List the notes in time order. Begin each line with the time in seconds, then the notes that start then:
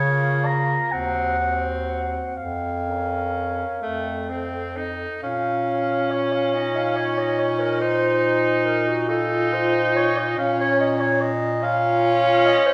Already playing: C#3 C#5
0.03 A#3 F4
0.45 A#5
0.91 D#2 C4 F#4 F#5
1.39 C4 F#4
1.87 F#5
2.35 F2 F5
2.85 C#4 A#4
3.81 F2 A3 A4
4.29 C4 A4
4.76 D#4
5.22 A#2 C#4 F5
6.11 C#5
6.33 F5
6.54 D#4 D#5
6.76 F5
6.96 C#5
7.19 D#5
7.39 C#5
7.60 A#4
7.81 D#4 C5
8.65 A#4
8.87 F#4
9.08 D#4 F4 A4
9.53 C5
9.96 C#5
10.18 D#5
10.37 A#2 C#4 F5
10.61 C#5
10.81 D#5
11.01 C#5
11.21 D#5
11.61 C#4 F4 F5
12.45 D#5
12.66 C5